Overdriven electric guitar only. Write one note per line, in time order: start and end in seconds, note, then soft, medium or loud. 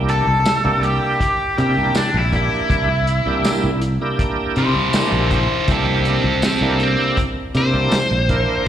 0.10 0.82 A4 loud
0.84 1.56 G4 medium
1.60 1.95 G4 medium
1.97 2.17 D4 medium
2.17 2.34 E4 medium
2.36 3.79 E4 medium
4.58 4.95 E4 medium
4.58 4.94 C5 medium
4.96 5.30 E4 medium
4.96 5.31 C5 medium
5.33 5.67 E4 medium
5.33 5.69 C5 medium
5.71 6.05 C4 medium
5.71 6.06 A4 medium
6.08 6.42 C4 medium
6.08 6.44 A4 medium
6.46 6.79 C4 medium
6.46 6.81 A4 medium
6.83 7.18 C4 medium
7.57 8.68 C5 loud